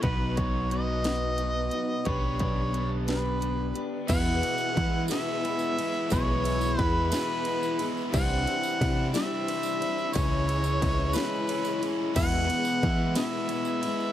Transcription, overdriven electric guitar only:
X:1
M:6/8
L:1/8
Q:3/8=59
K:E
V:1 name="Overdriven electric guitar"
[B,,F,B,DFB]6 | [B,=D=GB]6 | [E,,B,,E,G,B,E] [E,G,B,E] [E,G,B,E] [E,G,B,E] [E,G,B,E] [E,G,B,E] | [E,,B,,E,G,B,E] [E,G,B,E] [E,G,B,E] [E,G,B,E] [E,G,B,E] [E,G,B,E] |
[=C,E,=G,=CE] [G,CE] [E,G,CE] [G,CE] [E,G,CE] [G,CE] | [C,E,G,CE] [G,CE] [E,G,CE] [G,CE] [E,G,CE] [G,CE] | [E,,B,,E,G,B,E] [E,G,B,E] [E,G,B,E] [E,G,B,E] [E,G,B,E] [E,G,B,E] |]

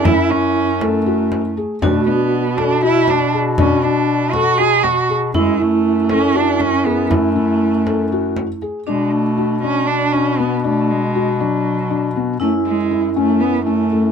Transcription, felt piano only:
X:1
M:7/8
L:1/8
Q:1/4=119
K:Bdor
V:1 name="Felt piano"
E E2 A F2 G | D D2 A F2 G | D D2 A F2 G | E E2 A F2 G |
E E2 A F2 G | D2 F D2 D B, | D2 F D2 D B, | C2 E C2 C A, |]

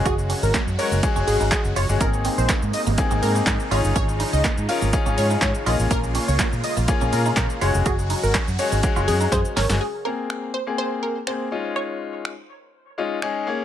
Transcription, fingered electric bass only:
X:1
M:4/4
L:1/16
Q:1/4=123
K:Db
V:1 name="Fingered electric bass" clef=bass
z3 A,,, z G,, z G,,, z G,,, A,,, A,,, z G,,, G,,, =G,,, | A,,,3 B,,, z A,, z A,,, z A,,, A,,2 A,, z A,,, =G,,, | A,,,3 D,, z A,, z A,,, z A,,, A,,2 A,, z B,,, =A,,, | B,,,3 D,, z B,, z B,,, z B,,, B,,2 B,, z G,,, F,,, |
z3 A,,, z G,, z A,,, z G,,, G,,2 G,, z A,,, =G,,, | z16 | z16 |]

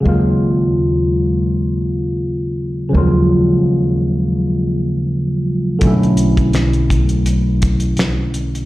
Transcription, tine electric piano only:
X:1
M:4/4
L:1/8
Q:"Swing 16ths" 1/4=83
K:Ebm
V:1 name="Tine electric piano" clef=bass
[D,G,A,B,F]8 | [D,F,G,A,B,F]8 | [=D,^F,=A,^C=E]8 |]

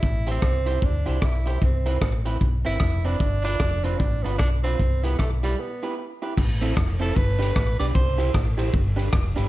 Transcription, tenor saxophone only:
X:1
M:4/4
L:1/8
Q:"Swing" 1/4=152
K:C
V:1 name="Tenor saxophone"
E C3 D2 E2 | C3 z2 E2 D- | D D2 C D B, D C- | C B, A, G, B,2 z2 |
z3 A B3 d | c2 z6 |]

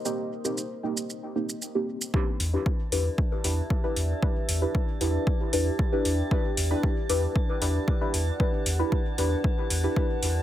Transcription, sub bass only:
X:1
M:4/4
L:1/8
Q:1/4=115
K:Em
V:1 name="Sub bass" clef=bass
z8 | z E,, z E,, z E,, z E,, | z E,, z E,, z E,, z E,, | z E,, z E,, z E,, z E,, |
z E,, z E,, z E,, z E,, |]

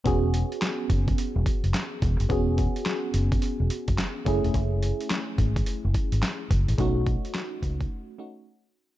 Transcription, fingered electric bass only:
X:1
M:4/4
L:1/16
Q:"Swing 16ths" 1/4=107
K:E
V:1 name="Fingered electric bass" clef=bass
E,,,3 z3 F,,,2 z E,,, z F,,, z2 E,,, F,,, | E,,,3 z3 F,,,2 z E,,, z F,,, z2 F,,, E,,, | F,,,3 z3 G,,,2 z F,,, z G,,, z2 F,,, A,,, | B,,,3 z3 C,,2 z8 |]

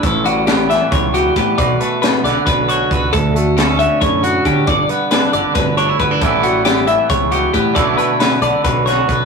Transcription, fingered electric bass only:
X:1
M:7/8
L:1/16
Q:1/4=136
K:Glyd
V:1 name="Fingered electric bass" clef=bass
A,,,8 C,,4 A,,2 | B,,,2 z4 B,,, z B,,,4 C,,2 | D,,8 F,,4 D,2 | G,,,2 z4 G,,, z G,,,4 G,,,2 |
A,,,8 C,,4 A,,2 | B,,,2 z4 B,,, z B,,,4 B,,,2 |]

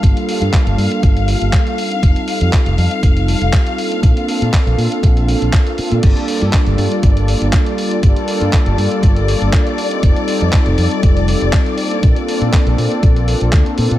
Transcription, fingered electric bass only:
X:1
M:4/4
L:1/16
Q:"Swing 16ths" 1/4=120
K:Gm
V:1 name="Fingered electric bass" clef=bass
G,,, z2 G,, z G,,, G,, z G,,,2 z G,,, z4 | F,,, z2 F,, z F,,, F,, z F,,,2 z F,,, z4 | B,,, z2 B,, z B,,, B,, z B,,,2 z B,,, z3 B,, | G,,, z2 G,, z G,,, G,, z G,,,2 z G,,, z4 |
G,,, z2 G,, z G,,, G,, z G,,,2 z G,,, z4 | F,,, z2 F,, z F,,, F,, z F,,,2 z F,,, z4 | B,,, z2 B,, z B,,, B,, z B,,,2 z B,,, D,, z B,, B,, |]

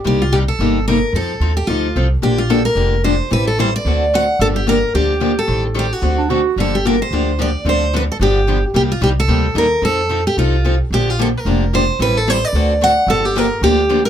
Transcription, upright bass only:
X:1
M:4/4
L:1/8
Q:"Swing" 1/4=221
K:Gm
V:1 name="Upright bass" clef=bass
C,,4 G,,,4 | F,,2 E,,2 D,,2 C,,2 | B,,,4 F,,,4 | A,,,4 D,,4 |
G,,,4 D,,4 | A,,,4 D,,4 | G,,,4 D,,4 | D,,4 G,,,4 |
C,,2 C,,2 D,,2 E,,2 | F,,4 C,,4 | B,,,4 F,,,4 | A,,,4 D,,4 |
G,,,4 D,,4 |]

